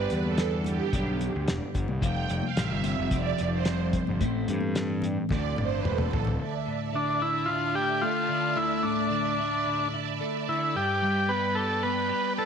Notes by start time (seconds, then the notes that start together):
Already playing: G2 D3 G3 B3 D4 G4 B4
0.10 E2, closed hi-hat
0.23 A4, high conga
0.38 snare, closed hi-hat
0.64 G4, closed hi-hat, high conga, low conga
0.91 B1 G2 D3 G3 B3 D4 G4, kick, closed hi-hat
1.19 closed hi-hat, low conga
1.36 D2
1.48 E1, snare, closed hi-hat
1.75 G1, kick, closed hi-hat, low conga
1.88 C2, high conga
2.01 F1 F2 C3 F3 G3 C4 F4 G5, kick, closed hi-hat
2.29 F1, closed hi-hat
2.42 F5, high conga
2.57 A1 E5, snare, closed hi-hat
2.72 G1
2.84 closed hi-hat, high conga, low conga
2.99 F1
3.11 F2 C3 F3 G3 C4 F4, kick, closed hi-hat
3.16 D5
3.38 F1, closed hi-hat, low conga
3.53 C5
3.65 snare, closed hi-hat
3.93 kick, closed hi-hat, low conga
4.07 G1, high conga
4.20 A1 A2 E3 A3 C4 E4 A4, kick, closed hi-hat
4.48 G2, closed hi-hat
4.61 high conga
4.75 snare, closed hi-hat
5.02 closed hi-hat, high conga, low conga
5.29 D2 A2 E3 A3 C4 E4 D5, kick, snare, low conga
5.33 A4
5.56 G1, high tom, low conga
5.62 C5
5.76 B4
5.84 E1, mid tom, high conga
5.89 A4
5.98 mid tom, high conga
6.11 D1, floor tom, low conga
6.25 floor tom, low conga
6.40 D2 D5 E5 A5
6.66 A2
6.93 D3 D4
7.20 E4
7.46 D3 F4
7.75 E4 G4
8.02 A3 F4
8.28 D3
8.56 D2 E4
8.83 A2 D4
9.11 D3
9.39 E4
9.65 D3
9.94 E4
10.20 A3
10.48 D3 E4
10.72 G2 B4 G5
10.76 G4
11.02 G3
11.28 B3 B4
11.55 G4 A4
11.83 B3 B4
12.09 G4
12.38 D4 A4